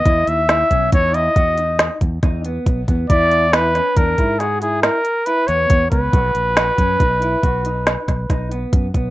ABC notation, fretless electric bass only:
X:1
M:7/4
L:1/8
Q:1/4=138
K:B
V:1 name="Fretless electric bass" clef=bass
E,, D,,2 B,,, E,,2 E,,3 E,, E,,2 B,,, E,, | E,,4 E,, G,,4 z2 E,, E,, C,, | B,,, A,,,2 F,, B,,,2 B,,,3 B,,, B,,,2 F,, B,,, |]